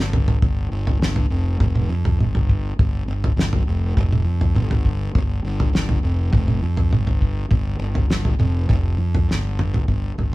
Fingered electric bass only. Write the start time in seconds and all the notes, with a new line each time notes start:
Already playing: G1
0.43 G1
0.71 G1
1.01 G1
1.30 F1
1.60 F1
1.89 F2
2.19 G1
2.79 G1
3.08 G1
3.36 G1
3.67 F1
3.97 F1
4.25 F2
4.55 G1
5.15 G1
5.44 G1
5.73 G1
6.03 F1
6.34 F1
6.62 F2
6.91 G1
7.51 G1
7.79 G1
8.09 G1
8.39 F1
8.70 F1
8.98 F2
9.29 G1
9.88 G1
10.18 G1